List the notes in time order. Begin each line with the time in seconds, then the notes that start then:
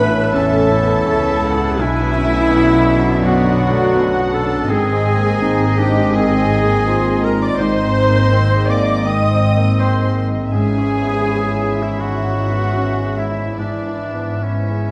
Already playing: A1 A2 E3 B3 C#4 D4 A4 B4 C#5 B5
0.00 E5
0.08 E4
0.33 E2 C#4 A4 A5
0.57 C#4
0.70 E4
0.83 B3
1.06 C#2 C#3 C#4 E5
1.30 A4
1.44 F#5
1.54 E4
1.78 B1 B2 D3 F#3 D4 E4 E5 G#5
2.02 B3
2.16 C#4
2.26 A3
2.51 B3 F#5
2.75 F#4
2.88 E5
2.99 D4
3.22 F#2 B3 F#4 D5 F#5
3.26 F#4
3.46 B3
3.70 A3
3.95 B3 D4 F#5
4.19 F#4
4.32 A4 A5
4.43 D4
4.67 G#1 G#2 D#3 C4 G#4 D#5 G#5
4.93 C4
5.16 A#3
5.40 C4 D#4
5.65 G#4
5.78 D4 G4 G5
5.89 D#4
6.14 D#3 C4 G#4 G#5
6.38 C4
6.63 A#3
6.87 C4 F4
7.11 G#4
7.23 A#4 A#5
7.34 D#4
7.42 D5 D6
7.58 G#1 G#2 D#3 C4 D#4 C5 D#5 C6
7.84 C4
8.07 A#3
8.32 C4
8.56 G#4
8.69 A#3 D5 D6
8.82 D#4
9.05 D#3 C4 D#5 D#6
9.31 C4
9.56 A#3
9.79 C4 C5 C6
10.04 G#4
10.28 D#4
10.51 G#1 G#2 E3 C#4 G#4 E5 G#5
10.77 C#4
11.02 B3
11.25 C#4 E4
11.51 G#4
11.75 E4
11.82 E4 E5
12.00 G#3 F#4 F#5
12.27 C#4
12.51 B3
12.77 C#4
13.05 G#4
13.17 E4 E5
13.31 E4
13.57 G#1 G#2 E3 D4 E4 D5 E5
13.87 E4
14.13 B3
14.41 C#4 C#5
14.71 G#4